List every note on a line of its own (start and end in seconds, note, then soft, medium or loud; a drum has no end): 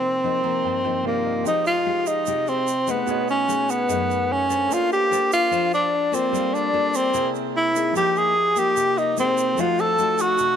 0.00 0.62 C3 medium
0.00 1.00 C3 soft
0.00 0.20 F3 medium
0.00 0.21 A#3 soft
0.00 1.06 C4 medium
0.00 0.21 D#4 soft
0.00 1.00 D#4 soft
0.00 1.01 F4 soft
0.00 1.01 G4 soft
0.00 1.02 A#4 soft
0.00 1.03 D5 soft
0.24 0.41 F3 medium
0.24 0.41 A#3 medium
0.24 0.41 D#4 medium
0.43 0.81 F3 medium
0.43 0.82 A#3 medium
0.43 0.82 D#4 medium
0.43 0.63 A#5 soft
0.63 1.43 G2 medium
0.63 0.83 G5 soft
0.84 1.42 F3 soft
0.84 1.42 A#3 soft
0.84 1.43 D#4 medium
0.84 1.04 G5 soft
1.03 1.45 C3 soft
1.03 1.44 A#3 medium
1.03 1.45 D#4 soft
1.03 1.46 F4 soft
1.03 1.42 G4 soft
1.03 1.43 A#4 medium
1.03 1.46 A#4 soft
1.03 1.46 D5 soft
1.03 1.24 F5 soft
1.25 1.44 D#5 soft
1.42 3.03 F3 soft
1.42 2.25 F3 medium
1.42 1.72 G#3 soft
1.42 3.04 G4 soft
1.42 1.72 G4 medium
1.42 shaker medium
1.46 1.72 D#4 soft
1.46 1.65 D#4 medium
1.46 3.06 C5 soft
1.46 1.65 D#5 medium
1.46 3.06 D#5 soft
1.66 2.09 F4 medium
1.66 2.08 F5 medium
1.66 shaker soft
1.86 2.23 G#3 medium
1.86 2.24 D#4 medium
1.86 2.24 G4 medium
2.06 2.50 D#4 medium
2.06 2.50 D#5 medium
2.06 shaker medium
2.26 3.06 C3 medium
2.26 2.67 G#3 soft
2.26 2.68 D#4 medium
2.26 2.68 G4 medium
2.26 shaker medium
2.47 2.92 C4 medium
2.47 2.90 C5 medium
2.47 shaker soft
2.67 shaker soft
2.87 3.45 A3 medium
2.87 3.30 B3 medium
2.87 3.45 D#4 medium
2.87 3.46 G#4 medium
2.87 3.29 B4 medium
2.87 shaker medium
3.05 3.87 B2 medium
3.05 4.66 B3 soft
3.05 4.66 F#4 soft
3.05 4.67 G#4 soft
3.05 shaker soft
3.10 4.68 C#5 soft
3.10 4.69 D#5 soft
3.28 3.73 C#4 medium
3.28 3.72 C#5 medium
3.28 shaker soft
3.48 3.86 A3 medium
3.48 3.86 D#4 medium
3.48 3.86 G#4 medium
3.48 shaker medium
3.69 4.34 B3 medium
3.69 4.33 B4 medium
3.69 shaker medium
3.88 4.68 F#2 medium
3.88 4.47 A3 soft
3.88 4.47 D#4 medium
3.88 4.47 G#4 medium
3.88 shaker medium
4.11 shaker soft
4.32 4.75 C#4 medium
4.32 4.74 C#5 medium
4.50 5.08 D4 medium
4.50 5.08 A4 medium
4.50 5.08 C5 medium
4.50 shaker medium
4.67 6.28 A#3 soft
4.67 5.49 A#3 medium
4.67 6.29 A4 soft
4.67 6.30 C5 soft
4.71 4.92 F4 medium
4.71 6.30 D5 soft
4.71 4.92 F5 medium
4.71 6.31 F5 soft
4.71 shaker medium
4.92 5.30 G4 medium
4.92 5.30 G5 medium
4.92 shaker soft
5.11 5.48 D4 medium
5.11 5.49 A4 soft
5.11 5.49 C5 medium
5.11 shaker medium
5.32 5.70 F4 loud
5.32 5.70 F5 medium
5.32 shaker medium
5.51 6.31 F3 medium
5.51 5.92 D4 medium
5.51 5.92 A4 medium
5.51 5.92 C5 medium
5.51 shaker medium
5.73 6.16 D4 medium
5.73 6.16 D5 medium
5.73 shaker soft
6.12 6.70 A#3 medium
6.12 6.56 C4 medium
6.12 6.70 F4 medium
6.12 6.70 A4 medium
6.12 6.57 C5 medium
6.12 shaker medium
6.30 7.11 G3 soft
6.30 7.12 G3 medium
6.30 7.12 A4 soft
6.35 7.13 D5 soft
6.35 7.14 F5 medium
6.35 shaker soft
6.54 6.98 D4 medium
6.54 6.97 D5 medium
6.54 shaker soft
6.73 7.11 A#3 medium
6.73 7.11 F4 medium
6.73 7.11 A4 medium
6.94 7.29 C4 medium
6.94 7.29 C5 medium
6.94 shaker medium
7.11 7.93 C3 medium
7.11 7.71 A#3 medium
7.11 7.92 C4 soft
7.11 7.72 E4 soft
7.11 7.93 G#4 soft
7.11 7.72 G#4 medium
7.11 7.93 A#4 soft
7.11 shaker medium
7.15 7.94 E5 soft
7.15 7.95 G5 medium
7.35 shaker soft
7.55 7.94 E4 medium
7.55 7.93 E5 medium
7.75 8.33 A#3 soft
7.75 8.33 D#4 medium
7.75 8.33 G#4 medium
7.75 shaker medium
7.93 9.53 F3 soft
7.93 8.74 F3 medium
7.93 9.54 F4 soft
7.93 9.54 A#4 soft
7.93 9.55 C5 soft
7.93 8.19 G5 medium
7.93 shaker medium
7.97 8.19 G4 loud
7.97 9.56 D#5 soft
7.97 9.56 G6 soft
8.16 8.60 G#4 loud
8.16 8.59 G#5 medium
8.16 shaker soft
8.56 9.14 A#3 medium
8.56 9.14 D#4 medium
8.56 9.00 G4 loud
8.56 9.00 G5 medium
8.56 shaker medium
8.76 9.56 C3 medium
8.76 shaker medium
8.97 9.18 D#4 medium
8.97 9.18 D#5 medium
8.97 shaker soft
9.17 9.56 A#3 medium
9.17 9.62 C4 medium
9.17 9.56 D#4 medium
9.17 9.57 G#4 medium
9.17 9.61 C5 medium
9.17 shaker medium
9.38 shaker medium
9.55 10.56 F3 soft
9.55 10.37 F3 medium
9.55 9.95 A3 soft
9.55 9.95 D#4 soft
9.55 9.96 F#4 medium
9.55 10.56 A4 soft
9.55 10.56 C5 soft
9.55 shaker medium
9.59 9.82 F4 medium
9.59 10.56 D#5 soft
9.59 9.82 F5 medium
9.59 10.56 F#5 soft
9.78 10.23 A4 loud
9.78 10.21 A5 medium
9.78 shaker soft
9.98 10.56 A3 medium
9.98 10.56 D#4 medium
9.98 10.56 F#4 medium
9.98 shaker medium
10.18 10.56 F#4 loud
10.18 10.56 F#5 medium
10.18 shaker medium
10.38 10.56 C3 medium
10.38 shaker medium